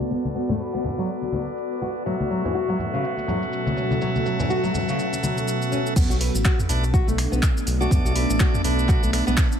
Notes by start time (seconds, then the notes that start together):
Already playing: B3 F#4 A4 D5
0.00 high conga, shaker
0.10 B3 B4, muted conga, shaker
0.25 high conga, shaker
0.35 B3, muted conga, shaker
0.49 A3, high conga, low conga, shaker
0.59 B4, shaker
0.73 B3, muted conga, shaker
0.84 high conga, low conga, shaker
0.98 F#3, muted conga, shaker
1.09 shaker
1.22 muted conga, shaker
1.32 B3, high conga, shaker
1.46 muted conga, shaker
1.58 shaker
1.72 shaker
1.81 F#4, muted conga, shaker
1.96 shaker
2.06 B2 F#3 A3 C#4 F#4 A4 E5, muted conga, shaker
2.20 high conga, shaker
2.30 F#3, muted conga, shaker
2.44 E3, low conga, shaker
2.55 F#4, shaker
2.68 F#3, muted conga, shaker
2.79 low conga, shaker
2.93 C#3, muted conga, shaker
3.04 shaker
3.17 muted conga, shaker
3.28 F#3, low conga, shaker
3.42 muted conga, shaker
3.53 shaker
3.66 high conga, shaker
3.76 C#4, muted conga, shaker
3.91 high conga, shaker
4.01 F#3, muted conga, shaker
4.16 high conga, shaker
4.26 F#3, muted conga, shaker
4.39 E3, high conga, low conga, shaker
4.50 F#4, shaker
4.64 F#3, muted conga, shaker
4.74 high conga, low conga, shaker
4.88 C#3, muted conga, shaker
4.99 shaker
5.13 muted conga, shaker
5.23 F#3, high conga, shaker
5.37 muted conga, shaker
5.48 shaker
5.62 shaker
5.72 C#4, muted conga, shaker
5.87 shaker
5.96 B1 A3 B3 D4, kick, mid tom, crash, shaker
6.10 F#4, shaker
6.20 B4, open hi-hat, shaker
6.35 A1, shaker
6.45 F#4, finger snap, kick, clap, shaker
6.59 mid tom, shaker
6.69 B1 A3 D4 B4, open hi-hat, shaker
6.84 shaker
6.94 F#4, kick, shaker
7.07 B1 A3, shaker
7.18 finger snap, open hi-hat, shaker
7.32 B1 B3, shaker
7.42 finger snap, kick, clap, shaker
7.57 shaker
7.67 B1, open hi-hat, shaker
7.81 A3 D4 F#4 D5, shaker
7.91 B1 B3, kick, mid tom, shaker
8.05 F#4, shaker
8.15 B4, open hi-hat, shaker
8.30 A1, shaker
8.40 F#4, finger snap, kick, clap, shaker
8.54 mid tom, shaker
8.64 B1 A3 D4 B4, open hi-hat, shaker
8.79 shaker
8.89 F#4, kick, clap, shaker
9.03 B1 A3, shaker
9.13 A3 D4 B4, finger snap, open hi-hat, shaker
9.27 B1 A3 B3 D4 B4, shaker
9.37 finger snap, kick, clap, shaker
9.52 shaker